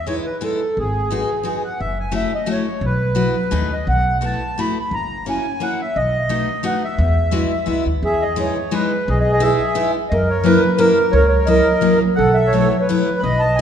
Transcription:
Already playing: upright bass E2
0.07 steel-string acoustic guitar G#3 B3 D#4 E4, accordion C#5
0.26 accordion B4
0.41 steel-string acoustic guitar G#3 B3 D#4 E4, accordion A4
0.77 upright bass G#1, accordion G#4
1.11 steel-string acoustic guitar G#3 B3 D#4 F#4
1.43 steel-string acoustic guitar G#3 B3 D#4 F#4, accordion G#5
1.57 accordion G#5
1.64 accordion F#5
1.80 upright bass F#1, accordion E5
1.99 accordion G#5
2.12 steel-string acoustic guitar A3 C#4 E4 F#4
2.16 accordion E5
2.35 accordion D#5
2.46 steel-string acoustic guitar A3 C#4 E4 F#4
2.52 accordion C#5
2.81 upright bass B1
2.86 accordion B4
3.15 steel-string acoustic guitar F#3 B3 E4 F#4
3.51 upright bass D#2, steel-string acoustic guitar A3 C#4 D#4 F#4
3.73 accordion D#5
3.87 upright bass B1, accordion F#5
4.21 steel-string acoustic guitar A3 B3 E4 F#4
4.25 accordion A5
4.58 steel-string acoustic guitar A3 B3 E4 F#4, accordion B5
4.80 accordion B5
4.91 upright bass F#1, accordion A#5
5.26 steel-string acoustic guitar A#3 C#4 E4 F#4, accordion G#5
5.60 steel-string acoustic guitar A#3 C#4 E4 F#4, accordion F#5
5.81 accordion E5
5.96 upright bass B1, accordion D#5
6.29 steel-string acoustic guitar A3 B3 D#4 F#4
6.63 steel-string acoustic guitar A3 B3 D#4 F#4, accordion F#5
6.84 accordion E5
6.98 upright bass E2
7.31 steel-string acoustic guitar G#3 B3 E4 F#4
7.66 upright bass C#2, steel-string acoustic guitar G#3 B3 E4 F#4
7.86 upright bass D#2
8.03 upright bass E2, accordion G#4 E5
8.22 accordion D#5
8.36 steel-string acoustic guitar G#3 B3 D#4 E4, accordion C#5
8.71 steel-string acoustic guitar G#3 B3 D#4 E4, accordion B4
9.08 upright bass B1, accordion G#4 D#5
9.20 accordion D#5
9.33 accordion D#5
9.40 steel-string acoustic guitar G#3 B3 D#4 E4, accordion E5
9.44 accordion G#4
9.75 steel-string acoustic guitar G#3 B3 D#4 E4
10.09 upright bass F#2, accordion D#5
10.13 accordion A#4
10.30 accordion C#5
10.44 steel-string acoustic guitar F#3 A#3 C#4 E4, accordion B4
10.78 steel-string acoustic guitar F#3 A#3 C#4 E4, accordion A#4
11.12 upright bass C#2, accordion A#4 C#5
11.28 accordion C#5
11.46 steel-string acoustic guitar F#3 A#3 C#4 E4, accordion A#4 D#5
11.81 steel-string acoustic guitar F#3 A#3 C#4 E4
12.15 upright bass B1, accordion A4 F#5
12.34 accordion E5
12.47 accordion C#5
12.53 steel-string acoustic guitar F#3 A3 B3 E4
12.80 accordion B4 C#5
12.89 steel-string acoustic guitar F#3 A3 B3 E4
13.20 upright bass B1, accordion D#5 B5
13.40 accordion A5
13.55 accordion G#5

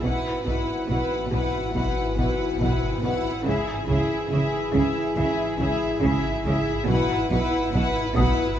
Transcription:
Already playing: grand piano C#4 C#5
0.03 synth drone G#1, double bass section B1, cello section B2, french horn section E3 F#4, viola section E4, violin section B4 F#5
0.46 double bass section B1, cello section B2, viola section E4, violin section B4 F#5
0.89 double bass section B1, cello section B2, viola section E4, violin section B4 F#5
1.32 double bass section B1, cello section B2, viola section E4, violin section B4 F#5
1.75 double bass section B1, cello section B2, viola section E4, violin section B4 F#5
2.18 double bass section B1, cello section B2, viola section E4, violin section B4 F#5
2.60 double bass section B1, cello section B2, viola section E4, violin section B4 F#5
3.03 double bass section B1, cello section B2, viola section E4, violin section B4 F#5
3.45 synth drone G#1, double bass section C#2, cello section C#3, french horn section E3 G#4, viola section E4, violin section G#4 E5
3.88 double bass section C#2, cello section C#3, viola section E4, violin section G#4 E5
4.31 double bass section C#2, cello section C#3, viola section E4, violin section G#4 E5
4.74 double bass section C#2, cello section C#3, viola section E4, violin section G#4 E5
5.17 double bass section C#2, cello section C#3, viola section E4, violin section G#4 E5, grand piano E5
5.60 double bass section C#2, cello section C#3, viola section E4, violin section G#4 E5
6.03 double bass section C#2, cello section C#3, viola section E4, violin section G#4 E5
6.45 double bass section C#2, cello section C#3, viola section E4, violin section G#4 E5
6.87 synth drone G#1, double bass section B1, cello section B2, french horn section E3 F#4, viola section E4, violin section B4 F#5
7.31 double bass section B1, cello section B2, viola section E4, violin section B4 F#5
7.74 double bass section B1, cello section B2, viola section E4, violin section B4 F#5
8.16 double bass section B1, cello section B2, viola section E4, violin section B4 F#5, grand piano D#6

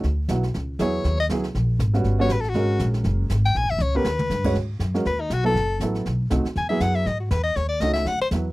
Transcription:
0.03 upright bass D2, brush sweep, snare
0.28 upright bass B1, grand piano F#3 B3 E4 F#4, snare, hi-hat pedal
0.43 snare
0.54 upright bass C#2, brush sweep, snare
0.79 upright bass E2, grand piano F#3 B3 E4 G#4, soprano saxophone C#5, snare, hi-hat pedal
1.04 upright bass D#2, brush sweep, snare
1.20 soprano saxophone D#5
1.29 upright bass C#2, grand piano F#3 B3 E4 G#4, snare, hi-hat pedal
1.43 snare
1.55 upright bass A#1, brush sweep, snare
1.79 upright bass G#1, snare, hi-hat pedal
1.94 grand piano G3 B3 C#4 F#4, snare
2.04 upright bass G1, brush sweep, snare
2.19 grand piano G3 B3 C#4 F#4, soprano saxophone C#5
2.29 upright bass A1, soprano saxophone B4, snare, hi-hat pedal
2.40 soprano saxophone A4, snare
2.49 soprano saxophone F#4
2.54 upright bass G#1, grand piano G#3 C#4 F#4 A#4, brush sweep, snare
2.79 upright bass A#1, snare, hi-hat pedal
2.94 snare
3.04 upright bass F#1, brush sweep, snare
3.30 upright bass G#1, snare, hi-hat pedal
3.45 soprano saxophone G5
3.55 upright bass A#1, soprano saxophone G#5, brush sweep, snare
3.63 upright bass G#1
3.70 upright bass E1, soprano saxophone E5
3.78 upright bass C#2, soprano saxophone C#5, hi-hat pedal, high tom
3.95 grand piano B3 C#4 G4 A#4, soprano saxophone B4
4.04 upright bass D#2, snare
4.19 mid tom
4.30 upright bass G2, snare, hi-hat pedal
4.44 grand piano G#3 C#4 F#4 C#5, kick, crash
4.54 upright bass G#2, brush sweep, snare
4.79 upright bass F#2, snare, hi-hat pedal
4.94 grand piano G#3 C#4 F#4 A#4, snare
5.05 upright bass D#2, soprano saxophone B4, brush sweep, snare
5.21 soprano saxophone D#4
5.30 upright bass B1, soprano saxophone F#4, snare, hi-hat pedal
5.44 grand piano F#3 B3 E4 A4, soprano saxophone A4
5.54 upright bass F#1, brush sweep, snare
5.80 upright bass A1, grand piano F#3 B3 E4 A4, snare, hi-hat pedal
5.95 snare
6.05 upright bass B1, brush sweep, snare
6.30 upright bass C2, grand piano A3 C4 D#4 F#4, snare, hi-hat pedal
6.45 muted upright bass stroke, snare
6.55 upright bass E2, soprano saxophone G#5, brush sweep, snare
6.69 grand piano F#3 B3 E4 G#4, soprano saxophone E5
6.80 upright bass F#2, soprano saxophone F#5, snare, hi-hat pedal
6.94 soprano saxophone E5, snare
7.06 upright bass G#2, soprano saxophone D#5, brush sweep, snare
7.20 soprano saxophone F#4
7.31 upright bass E2, soprano saxophone B4, snare, hi-hat pedal
7.44 soprano saxophone D#5
7.56 upright bass D#2, soprano saxophone C#5, brush sweep, snare
7.69 soprano saxophone D5
7.80 upright bass C#2, grand piano A3 C#4 D#4 F#4, soprano saxophone D#5, snare, hi-hat pedal
7.93 soprano saxophone E5, snare
8.05 upright bass D2, soprano saxophone F#5, brush sweep, snare
8.20 soprano saxophone C5, muted upright bass stroke
8.31 upright bass E2, grand piano F#3 B3 E4 B4, snare, hi-hat pedal

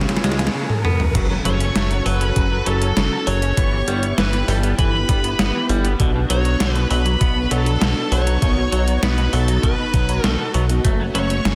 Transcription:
Already playing: supersaw synth B3 C#4 F4 G#4 C#5, riser
0.01 snare
0.09 clean electric guitar C#3, snare, closed hi-hat
0.17 snare
0.24 analog synth bass C#2, clean electric guitar F3 G#3, snare, closed hi-hat
0.32 snare
0.39 clean electric guitar C#3, snare, closed hi-hat
0.47 snare
0.54 clean electric guitar C#3
0.70 high tom
0.85 clean electric guitar B3, mid tom
1.00 mid tom
1.15 analog synth bass F#1, clean electric guitar C#3 F#3, supersaw synth C#4 F#4 A4, kick, closed hi-hat, crash, impact
1.30 clean electric guitar F#3
1.45 analog synth bass F#1, clean electric guitar F#3 C#4, lead electric guitar C#5, string machine C#6, closed hi-hat
1.60 clean electric guitar C#4, closed hi-hat
1.75 analog synth bass F#1, clean electric guitar F#3 A3, snare, closed hi-hat
1.91 clean electric guitar F#3, closed hi-hat
2.06 analog synth bass F#1, clean electric guitar F#3, lead electric guitar B4, string machine B5, open hi-hat
2.21 clean electric guitar C#4, closed hi-hat
2.36 analog synth bass F#1, clean electric guitar C#3 F#3, kick, closed hi-hat
2.51 clean electric guitar F#3
2.66 analog synth bass F#1, clean electric guitar F#3 C#4, lead electric guitar A4, string machine A5, closed hi-hat
2.81 clean electric guitar C#4, closed hi-hat
2.97 analog synth bass F#1, clean electric guitar C#3 F#3, snare, closed hi-hat
3.12 clean electric guitar F#3
3.27 analog synth bass F#1, clean electric guitar F#3, lead electric guitar C#5, string machine C#6, open hi-hat
3.42 clean electric guitar C#4, closed hi-hat
3.57 analog synth bass G1, clean electric guitar E3 B3, supersaw synth B3 E4 G4, kick, closed hi-hat
3.72 clean electric guitar E3
3.88 analog synth bass G1, clean electric guitar G3 B3, closed hi-hat
4.03 clean electric guitar B3, closed hi-hat
4.18 analog synth bass G1, clean electric guitar E3, lead electric guitar B4, string machine B5, snare, closed hi-hat
4.33 clean electric guitar E3, snare, closed hi-hat
4.48 analog synth bass G1, clean electric guitar E3 G3, lead electric guitar A4, string machine A5, open hi-hat
4.63 clean electric guitar B3, closed hi-hat
4.78 analog synth bass G1, clean electric guitar E3, lead electric guitar B4, string machine B5, kick, closed hi-hat
4.94 clean electric guitar E3
5.09 analog synth bass G1, clean electric guitar G3 B3, kick, closed hi-hat
5.24 clean electric guitar B3, closed hi-hat
5.39 analog synth bass G1, clean electric guitar E3 B3, snare, closed hi-hat
5.54 clean electric guitar E3
5.69 analog synth bass G1, clean electric guitar E3 G3, open hi-hat
5.84 clean electric guitar B3, closed hi-hat
6.00 analog synth bass B1, clean electric guitar B2 D3, supersaw synth D4 F#4, kick, closed hi-hat
6.15 clean electric guitar B2
6.30 analog synth bass B1, clean electric guitar F#3, lead electric guitar C#5, string machine C#6, closed hi-hat
6.45 clean electric guitar F#3, closed hi-hat
6.60 analog synth bass B1, clean electric guitar B2 D3, snare, closed hi-hat
6.73 clean electric guitar B2, lead electric guitar B4, string machine B5, closed hi-hat
6.91 analog synth bass B1, clean electric guitar B2 F#3, lead electric guitar B4, string machine B5, open hi-hat
7.06 clean electric guitar F#3, closed hi-hat
7.21 analog synth bass B1, clean electric guitar B2 B3, kick, closed hi-hat
7.36 clean electric guitar B2
7.51 analog synth bass B1, clean electric guitar F#3, lead electric guitar A4, string machine A5, closed hi-hat
7.66 clean electric guitar F#3, closed hi-hat
7.81 analog synth bass B1, clean electric guitar B2 D3, snare, closed hi-hat
7.97 clean electric guitar B2
8.12 analog synth bass B1, clean electric guitar B2 F#3, lead electric guitar C#5, string machine C#6, open hi-hat
8.27 clean electric guitar F#3, closed hi-hat
8.42 analog synth bass B1, clean electric guitar B2 D#3, supersaw synth D#4, kick, closed hi-hat
8.57 clean electric guitar B2
8.72 analog synth bass B1, clean electric guitar F#3, closed hi-hat
8.88 clean electric guitar F#3, closed hi-hat
9.03 analog synth bass B1, clean electric guitar B2 B3, lead electric guitar B4, string machine B5, snare, closed hi-hat
9.18 clean electric guitar B2, snare, closed hi-hat
9.33 analog synth bass B1, clean electric guitar B2 F#3, lead electric guitar A4, string machine A5, open hi-hat
9.48 clean electric guitar F#3, closed hi-hat
9.63 analog synth bass B1, clean electric guitar B2 D#3, lead electric guitar B4, string machine B5, kick, closed hi-hat
9.79 clean electric guitar B2
9.94 analog synth bass B1, clean electric guitar B2 F#3, kick, closed hi-hat
10.09 clean electric guitar F#3, closed hi-hat
10.24 analog synth bass B1, clean electric guitar B2 D#3, lead electric guitar A4, string machine A5, snare, closed hi-hat
10.39 clean electric guitar B2
10.54 analog synth bass B1, clean electric guitar F#3 B3, open hi-hat
10.69 clean electric guitar B2, closed hi-hat
10.85 analog synth bass F#1, clean electric guitar F#3 A3, supersaw synth A3, kick, closed hi-hat
11.00 clean electric guitar F#3
11.15 analog synth bass F#1, clean electric guitar F#3 C#4, lead electric guitar C#5, string machine C#6, closed hi-hat
11.30 clean electric guitar C#4, closed hi-hat
11.45 analog synth bass F#1, clean electric guitar C#3 F#3, snare, closed hi-hat

